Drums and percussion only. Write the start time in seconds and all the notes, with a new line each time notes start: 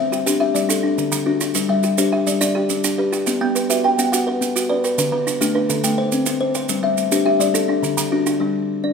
0.13 maracas
0.27 maracas
0.56 maracas
0.70 maracas
0.98 maracas
1.12 maracas
1.41 maracas
1.55 maracas
1.83 maracas
1.98 maracas
2.27 maracas
2.41 maracas
2.69 maracas
2.84 maracas
3.13 maracas
3.27 maracas
3.56 maracas
3.70 maracas
3.99 maracas
4.13 maracas
4.42 maracas
4.56 maracas
4.84 maracas
4.98 maracas
5.27 maracas
5.42 maracas
5.70 maracas
5.84 maracas
6.12 maracas
6.26 maracas
6.55 maracas
6.69 maracas
6.98 maracas
7.12 maracas
7.41 maracas
7.55 maracas
7.84 maracas
7.98 maracas
8.26 maracas